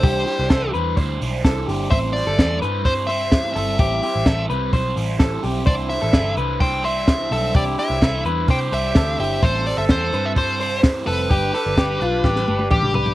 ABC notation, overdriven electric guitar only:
X:1
M:4/4
L:1/8
Q:1/4=128
K:C
V:1 name="Overdriven electric guitar"
[C,E,G,DEc] [G,DEc] [C,E,G,DEc] [G,DEc] [G,DEc] [G,DEc] [C,E,G,DEc] [G,DEc] | [A,,E,G,CEc] [G,CEc] [A,,E,G,CEc] [G,CEc] [G,CEc] [G,CEc] [A,,E,G,CEc] [G,CEc] | [A,,E,G,CEc] [G,CEc] [A,,E,G,CEc] [G,CEc] [G,CEc] [G,CEc] [A,,E,G,CEc] [G,CEc] | [C,E,G,DEc] [G,DEc] [C,E,G,DEc] [G,DEc] [G,DEc] [G,DEc] [C,E,G,DEc] [G,DEc] |
[C,E,G,DEc] [G,DEc] [C,E,G,DEc] [G,DEc] [G,DEc] [G,DEc] [C,E,G,DEc] [G,DEc] | [A,,E,G,CEc] [G,CEc] [A,,E,G,CEc] [G,CEc] [G,CEc] [G,CEc] [A,,E,G,CEc] [G,CEc] | [G,DGB] [DGB] [G,DGB] [DGB] [G,DGB] [DGB] [G,DGB] [DGB] |]